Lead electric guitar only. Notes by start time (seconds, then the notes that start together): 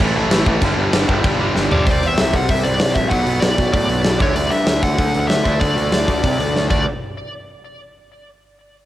1.72 C5 D5
1.91 D5
2.06 E5
2.21 E5
2.36 F#5
2.50 E5
2.63 D5
2.94 E5
3.09 F#5
3.40 D5
3.73 D5
4.22 C#5
4.36 D5
4.51 E5
4.68 E5
4.83 F#5
5.20 F#5
5.28 E5
5.60 D5
6.70 D5